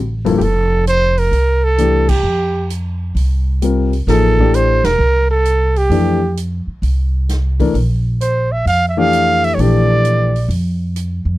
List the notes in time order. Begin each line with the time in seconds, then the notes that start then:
Already playing: A1
0.25 E1 G2 F3 A#3 E4 A4, open hi-hat
0.37 F1 G4
0.41 A4, open hi-hat
0.87 C5, closed hi-hat
1.18 A#4, open hi-hat
1.31 C2, open hi-hat
1.64 A4
1.78 E3 A3 D4 G4, closed hi-hat
2.09 G4, kick, crash
2.23 F2
2.70 closed hi-hat
3.15 C2, open hi-hat
3.62 G3 C4 F4 A#4, closed hi-hat
3.93 open hi-hat
4.07 A1 F3 A#3 D#4 G#4 A4, snare, open hi-hat
4.39 E3 A3 D4 G4, kick
4.54 C5, closed hi-hat
4.84 E1 A#4, snare, ride
4.99 C2
5.31 A4
5.45 closed hi-hat
5.76 G4, open hi-hat
5.90 F2 E3 A3 D4 G4, open hi-hat
6.37 closed hi-hat
6.67 muted upright bass stroke
6.82 C2, open hi-hat
7.29 snare, closed hi-hat
7.59 E3 A3 D4 A#4, kick, open hi-hat
7.74 A#1, open hi-hat
8.21 C5, closed hi-hat
8.52 E5
8.66 F2 F5, open hi-hat
8.88 E5
8.97 E3 A3 D4 G4 F5
9.13 closed hi-hat
9.44 E5, open hi-hat
9.54 A#1 C#5
9.59 E3 A3 D4 G4 D5, open hi-hat
10.05 closed hi-hat
10.36 open hi-hat
10.49 F2, open hi-hat
10.96 closed hi-hat
11.25 F2